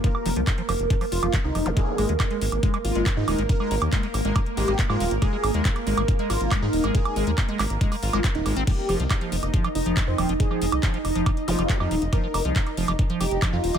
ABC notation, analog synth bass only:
X:1
M:4/4
L:1/16
Q:1/4=139
K:Fm
V:1 name="Analog synth bass" clef=bass
z2 F,,, C,, z2 F,,, F,,, z2 F,,, F,,, z C,, F,,, F,,, | z2 A,,, E,, z2 A,,, A,,, z2 A,,, A,,, z A,, E,,, A,,, | z2 A,,, E,, z2 A,,, A,,, z2 A,,, A,,, z A,, E,,, A,,, | z2 A,,, E,, z2 A,,, A,,, z2 A,,, A,,, z A,, E,,, A,,, |
z2 A,,, E,, z2 A,,, A,,, z2 A,,, A,,, z E,,, A,,, A,,, | z2 F,,, C,, z2 F,,, F,,, z2 F,,, F,,, z F,, E,,, F,,, | z2 F,,, C,, z2 F,,, F,,, z2 F,,, F,,, z F,, E,,, F,,, | z2 F,,, C,, z2 F,,, F,,, z2 F,,, F,,, z F,, E,,, F,,, |]